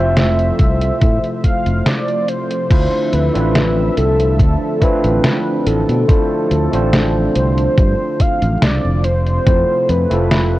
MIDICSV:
0, 0, Header, 1, 6, 480
1, 0, Start_track
1, 0, Tempo, 845070
1, 1538, Time_signature, 4, 2, 24, 8
1, 6016, End_track
2, 0, Start_track
2, 0, Title_t, "Soft synth lead"
2, 0, Program_c, 0, 80
2, 0, Note_on_c, 0, 76, 114
2, 818, Note_off_c, 0, 76, 0
2, 821, Note_on_c, 0, 77, 111
2, 1059, Note_on_c, 0, 74, 109
2, 1068, Note_off_c, 0, 77, 0
2, 1298, Note_on_c, 0, 72, 115
2, 1306, Note_off_c, 0, 74, 0
2, 1779, Note_on_c, 0, 71, 111
2, 1787, Note_off_c, 0, 72, 0
2, 2255, Note_off_c, 0, 71, 0
2, 2259, Note_on_c, 0, 69, 111
2, 2740, Note_on_c, 0, 71, 110
2, 2748, Note_off_c, 0, 69, 0
2, 3217, Note_on_c, 0, 69, 99
2, 3226, Note_off_c, 0, 71, 0
2, 3456, Note_off_c, 0, 69, 0
2, 3460, Note_on_c, 0, 69, 111
2, 4156, Note_off_c, 0, 69, 0
2, 4180, Note_on_c, 0, 72, 112
2, 4661, Note_on_c, 0, 77, 107
2, 4669, Note_off_c, 0, 72, 0
2, 4901, Note_on_c, 0, 74, 109
2, 4909, Note_off_c, 0, 77, 0
2, 5135, Note_off_c, 0, 74, 0
2, 5138, Note_on_c, 0, 72, 115
2, 5621, Note_on_c, 0, 71, 111
2, 5629, Note_off_c, 0, 72, 0
2, 6016, Note_off_c, 0, 71, 0
2, 6016, End_track
3, 0, Start_track
3, 0, Title_t, "Tine electric piano"
3, 0, Program_c, 1, 4
3, 0, Control_c, 1, 64, 127
3, 0, Note_on_c, 1, 57, 74
3, 0, Note_on_c, 1, 60, 69
3, 0, Note_on_c, 1, 64, 69
3, 0, Note_on_c, 1, 65, 69
3, 0, Note_on_c, 1, 72, 82
3, 1507, Note_off_c, 1, 57, 0
3, 1510, Note_off_c, 1, 60, 0
3, 1513, Note_off_c, 1, 65, 0
3, 1515, Note_off_c, 1, 72, 0
3, 1533, Note_on_c, 1, 57, 74
3, 1536, Note_on_c, 1, 62, 68
3, 1538, Note_off_c, 1, 64, 0
3, 1538, Note_on_c, 1, 64, 72
3, 1539, Note_on_c, 1, 65, 72
3, 1541, Note_on_c, 1, 72, 84
3, 1545, Control_c, 1, 64, 0
3, 1657, Control_c, 1, 64, 127
3, 1872, Note_off_c, 1, 57, 0
3, 1873, Note_off_c, 1, 62, 0
3, 1874, Note_off_c, 1, 64, 0
3, 1875, Note_off_c, 1, 65, 0
3, 1876, Note_off_c, 1, 72, 0
3, 1895, Note_on_c, 1, 57, 81
3, 1900, Note_on_c, 1, 62, 74
3, 1904, Note_on_c, 1, 64, 77
3, 1909, Note_on_c, 1, 65, 76
3, 1913, Note_on_c, 1, 60, 90
3, 2706, Note_off_c, 1, 57, 0
3, 2709, Note_off_c, 1, 62, 0
3, 2711, Note_off_c, 1, 64, 0
3, 2713, Note_off_c, 1, 65, 0
3, 2715, Note_off_c, 1, 60, 0
3, 2731, Note_on_c, 1, 57, 90
3, 2735, Note_on_c, 1, 62, 86
3, 2738, Note_on_c, 1, 64, 85
3, 2744, Note_on_c, 1, 65, 83
3, 2749, Note_on_c, 1, 60, 101
3, 3427, Note_off_c, 1, 57, 0
3, 3430, Note_off_c, 1, 62, 0
3, 3431, Note_off_c, 1, 64, 0
3, 3434, Note_off_c, 1, 65, 0
3, 3436, Note_off_c, 1, 60, 0
3, 3450, Note_on_c, 1, 57, 77
3, 3454, Note_on_c, 1, 62, 69
3, 3455, Note_on_c, 1, 64, 69
3, 3459, Note_on_c, 1, 65, 68
3, 3459, Note_on_c, 1, 72, 84
3, 3790, Note_off_c, 1, 57, 0
3, 3792, Note_off_c, 1, 62, 0
3, 3793, Note_off_c, 1, 64, 0
3, 3794, Note_off_c, 1, 65, 0
3, 3795, Note_off_c, 1, 72, 0
3, 3815, Note_on_c, 1, 57, 76
3, 3819, Note_on_c, 1, 62, 69
3, 3824, Note_on_c, 1, 60, 68
3, 3827, Note_on_c, 1, 65, 69
3, 3832, Note_on_c, 1, 72, 81
3, 5120, Note_off_c, 1, 57, 0
3, 5122, Note_off_c, 1, 62, 0
3, 5125, Note_off_c, 1, 60, 0
3, 5126, Note_off_c, 1, 65, 0
3, 5128, Note_off_c, 1, 72, 0
3, 5145, Control_c, 1, 64, 0
3, 5233, Control_c, 1, 64, 127
3, 5373, Note_on_c, 1, 57, 79
3, 5374, Note_on_c, 1, 60, 71
3, 5377, Note_on_c, 1, 64, 70
3, 5379, Note_on_c, 1, 65, 70
3, 5382, Note_on_c, 1, 72, 86
3, 5711, Note_off_c, 1, 57, 0
3, 5712, Note_off_c, 1, 60, 0
3, 5714, Note_off_c, 1, 64, 0
3, 5714, Note_off_c, 1, 65, 0
3, 5716, Note_off_c, 1, 72, 0
3, 5736, Note_on_c, 1, 57, 84
3, 5741, Note_on_c, 1, 60, 76
3, 5745, Note_on_c, 1, 64, 75
3, 5750, Note_on_c, 1, 65, 77
3, 5754, Note_on_c, 1, 69, 92
3, 6016, Note_off_c, 1, 57, 0
3, 6016, Note_off_c, 1, 60, 0
3, 6016, Note_off_c, 1, 64, 0
3, 6016, Note_off_c, 1, 65, 0
3, 6016, Note_off_c, 1, 69, 0
3, 6016, End_track
4, 0, Start_track
4, 0, Title_t, "Analog synth pad"
4, 0, Program_c, 2, 89
4, 0, Note_on_c, 2, 48, 79
4, 0, Note_on_c, 2, 53, 77
4, 0, Note_on_c, 2, 57, 75
4, 0, Note_on_c, 2, 72, 88
4, 1514, Note_off_c, 2, 57, 0
4, 1515, Note_off_c, 2, 48, 0
4, 1515, Note_off_c, 2, 53, 0
4, 1515, Note_off_c, 2, 72, 0
4, 1538, Note_on_c, 2, 50, 84
4, 1538, Note_on_c, 2, 76, 94
4, 1539, Note_on_c, 2, 53, 78
4, 1539, Note_on_c, 2, 60, 77
4, 3439, Note_off_c, 2, 76, 0
4, 5116, Note_off_c, 2, 50, 0
4, 5116, Note_off_c, 2, 60, 0
4, 5136, Note_on_c, 2, 57, 76
4, 5139, Note_on_c, 2, 48, 79
4, 6016, Note_off_c, 2, 48, 0
4, 6016, Note_off_c, 2, 53, 0
4, 6016, Note_off_c, 2, 57, 0
4, 6016, End_track
5, 0, Start_track
5, 0, Title_t, "Fingered electric bass"
5, 0, Program_c, 3, 33
5, 0, Note_on_c, 3, 29, 83
5, 284, Note_off_c, 3, 29, 0
5, 337, Note_on_c, 3, 36, 85
5, 511, Note_off_c, 3, 36, 0
5, 578, Note_on_c, 3, 45, 79
5, 667, Note_off_c, 3, 45, 0
5, 943, Note_on_c, 3, 29, 80
5, 1024, Note_off_c, 3, 29, 0
5, 1537, Note_on_c, 3, 38, 97
5, 1627, Note_off_c, 3, 38, 0
5, 1780, Note_on_c, 3, 38, 87
5, 1868, Note_off_c, 3, 38, 0
5, 1907, Note_on_c, 3, 33, 83
5, 2206, Note_off_c, 3, 33, 0
5, 2258, Note_on_c, 3, 36, 84
5, 2497, Note_off_c, 3, 36, 0
5, 2497, Note_on_c, 3, 38, 91
5, 2587, Note_off_c, 3, 38, 0
5, 2865, Note_on_c, 3, 33, 78
5, 2945, Note_off_c, 3, 33, 0
5, 3217, Note_on_c, 3, 33, 96
5, 3307, Note_off_c, 3, 33, 0
5, 3343, Note_on_c, 3, 47, 83
5, 3424, Note_off_c, 3, 47, 0
5, 3698, Note_on_c, 3, 38, 89
5, 3787, Note_off_c, 3, 38, 0
5, 3823, Note_on_c, 3, 33, 83
5, 4125, Note_off_c, 3, 33, 0
5, 4178, Note_on_c, 3, 36, 85
5, 4352, Note_off_c, 3, 36, 0
5, 4416, Note_on_c, 3, 43, 84
5, 4506, Note_off_c, 3, 43, 0
5, 4783, Note_on_c, 3, 33, 82
5, 4864, Note_off_c, 3, 33, 0
5, 4898, Note_on_c, 3, 36, 90
5, 4987, Note_off_c, 3, 36, 0
5, 5026, Note_on_c, 3, 29, 85
5, 5326, Note_off_c, 3, 29, 0
5, 5376, Note_on_c, 3, 41, 100
5, 5467, Note_off_c, 3, 41, 0
5, 5618, Note_on_c, 3, 41, 89
5, 5707, Note_off_c, 3, 41, 0
5, 5743, Note_on_c, 3, 29, 81
5, 6016, Note_off_c, 3, 29, 0
5, 6016, End_track
6, 0, Start_track
6, 0, Title_t, "Drums"
6, 95, Note_on_c, 9, 38, 114
6, 95, Note_on_c, 9, 42, 83
6, 152, Note_off_c, 9, 38, 0
6, 152, Note_off_c, 9, 42, 0
6, 221, Note_on_c, 9, 42, 36
6, 278, Note_off_c, 9, 42, 0
6, 335, Note_on_c, 9, 42, 79
6, 337, Note_on_c, 9, 36, 97
6, 392, Note_off_c, 9, 42, 0
6, 394, Note_off_c, 9, 36, 0
6, 462, Note_on_c, 9, 42, 54
6, 519, Note_off_c, 9, 42, 0
6, 576, Note_on_c, 9, 42, 80
6, 577, Note_on_c, 9, 36, 112
6, 633, Note_off_c, 9, 42, 0
6, 634, Note_off_c, 9, 36, 0
6, 702, Note_on_c, 9, 42, 37
6, 759, Note_off_c, 9, 42, 0
6, 817, Note_on_c, 9, 36, 61
6, 817, Note_on_c, 9, 42, 78
6, 874, Note_off_c, 9, 36, 0
6, 874, Note_off_c, 9, 42, 0
6, 943, Note_on_c, 9, 42, 53
6, 1000, Note_off_c, 9, 42, 0
6, 1056, Note_on_c, 9, 38, 114
6, 1056, Note_on_c, 9, 42, 81
6, 1113, Note_off_c, 9, 38, 0
6, 1113, Note_off_c, 9, 42, 0
6, 1183, Note_on_c, 9, 42, 37
6, 1239, Note_off_c, 9, 42, 0
6, 1297, Note_on_c, 9, 42, 80
6, 1354, Note_off_c, 9, 42, 0
6, 1424, Note_on_c, 9, 42, 53
6, 1481, Note_off_c, 9, 42, 0
6, 1537, Note_on_c, 9, 36, 114
6, 1538, Note_on_c, 9, 42, 83
6, 1538, Note_on_c, 9, 49, 100
6, 1594, Note_off_c, 9, 36, 0
6, 1595, Note_off_c, 9, 42, 0
6, 1595, Note_off_c, 9, 49, 0
6, 1778, Note_on_c, 9, 42, 85
6, 1835, Note_off_c, 9, 42, 0
6, 1906, Note_on_c, 9, 42, 52
6, 1962, Note_off_c, 9, 42, 0
6, 2019, Note_on_c, 9, 38, 126
6, 2019, Note_on_c, 9, 42, 87
6, 2075, Note_off_c, 9, 38, 0
6, 2075, Note_off_c, 9, 42, 0
6, 2257, Note_on_c, 9, 42, 81
6, 2314, Note_off_c, 9, 42, 0
6, 2385, Note_on_c, 9, 42, 55
6, 2442, Note_off_c, 9, 42, 0
6, 2497, Note_on_c, 9, 36, 118
6, 2499, Note_on_c, 9, 42, 85
6, 2554, Note_off_c, 9, 36, 0
6, 2555, Note_off_c, 9, 42, 0
6, 2737, Note_on_c, 9, 36, 64
6, 2738, Note_on_c, 9, 42, 85
6, 2794, Note_off_c, 9, 36, 0
6, 2794, Note_off_c, 9, 42, 0
6, 2864, Note_on_c, 9, 42, 56
6, 2921, Note_off_c, 9, 42, 0
6, 2976, Note_on_c, 9, 38, 119
6, 2976, Note_on_c, 9, 42, 83
6, 3033, Note_off_c, 9, 38, 0
6, 3033, Note_off_c, 9, 42, 0
6, 3217, Note_on_c, 9, 42, 84
6, 3274, Note_off_c, 9, 42, 0
6, 3345, Note_on_c, 9, 42, 54
6, 3402, Note_off_c, 9, 42, 0
6, 3457, Note_on_c, 9, 36, 119
6, 3458, Note_on_c, 9, 42, 85
6, 3514, Note_off_c, 9, 36, 0
6, 3515, Note_off_c, 9, 42, 0
6, 3697, Note_on_c, 9, 42, 82
6, 3754, Note_off_c, 9, 42, 0
6, 3824, Note_on_c, 9, 42, 54
6, 3880, Note_off_c, 9, 42, 0
6, 3937, Note_on_c, 9, 38, 127
6, 3937, Note_on_c, 9, 42, 85
6, 3993, Note_off_c, 9, 38, 0
6, 3993, Note_off_c, 9, 42, 0
6, 4176, Note_on_c, 9, 42, 84
6, 4233, Note_off_c, 9, 42, 0
6, 4303, Note_on_c, 9, 42, 54
6, 4360, Note_off_c, 9, 42, 0
6, 4416, Note_on_c, 9, 42, 83
6, 4417, Note_on_c, 9, 36, 120
6, 4473, Note_off_c, 9, 36, 0
6, 4473, Note_off_c, 9, 42, 0
6, 4656, Note_on_c, 9, 42, 84
6, 4657, Note_on_c, 9, 36, 65
6, 4713, Note_off_c, 9, 36, 0
6, 4713, Note_off_c, 9, 42, 0
6, 4782, Note_on_c, 9, 42, 57
6, 4839, Note_off_c, 9, 42, 0
6, 4897, Note_on_c, 9, 38, 124
6, 4897, Note_on_c, 9, 42, 82
6, 4953, Note_off_c, 9, 38, 0
6, 4953, Note_off_c, 9, 42, 0
6, 5136, Note_on_c, 9, 42, 84
6, 5193, Note_off_c, 9, 42, 0
6, 5263, Note_on_c, 9, 42, 55
6, 5320, Note_off_c, 9, 42, 0
6, 5377, Note_on_c, 9, 36, 120
6, 5377, Note_on_c, 9, 42, 83
6, 5434, Note_off_c, 9, 36, 0
6, 5434, Note_off_c, 9, 42, 0
6, 5617, Note_on_c, 9, 42, 82
6, 5674, Note_off_c, 9, 42, 0
6, 5742, Note_on_c, 9, 42, 53
6, 5799, Note_off_c, 9, 42, 0
6, 5857, Note_on_c, 9, 38, 127
6, 5857, Note_on_c, 9, 42, 84
6, 5914, Note_off_c, 9, 38, 0
6, 5914, Note_off_c, 9, 42, 0
6, 6016, End_track
0, 0, End_of_file